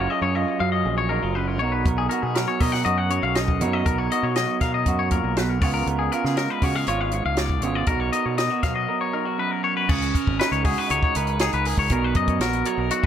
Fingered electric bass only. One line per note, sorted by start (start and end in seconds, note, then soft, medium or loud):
0.22 0.44 F#2 medium
0.60 0.82 F#2 medium
0.85 1.18 A#1 medium
1.23 1.61 F#1 medium
1.61 1.83 B1 medium
1.86 2.07 B1 medium
2.23 2.45 B2 medium
2.61 2.82 B2 medium
2.86 3.19 F#2 medium
3.23 3.61 B1 medium
3.60 3.82 F#2 medium
3.86 4.08 B1 medium
4.23 4.45 B2 medium
4.61 4.83 B2 medium
4.86 5.19 F#2 medium
5.24 5.62 B1 medium
5.62 5.84 C#2 medium
5.86 6.09 C#2 medium
6.24 6.46 C#3 medium
6.62 6.84 C#3 medium
6.88 7.21 G#1 medium
7.25 7.62 C#2 medium
7.62 7.85 G#1 medium
7.87 8.09 B1 medium
8.26 8.48 B2 medium
8.63 8.86 B2 medium
9.89 10.11 C#2 loud
10.27 10.38 G#1 medium
10.52 10.74 C#2 medium
10.90 11.01 C#2 medium
11.16 11.49 C#2 medium
11.53 11.75 C#2 medium
11.77 11.89 C#2 medium
11.90 12.12 B1 loud
12.15 12.37 F#2 medium
12.40 12.62 A#1 medium
12.78 12.89 B1 medium
13.03 13.06 F#2 medium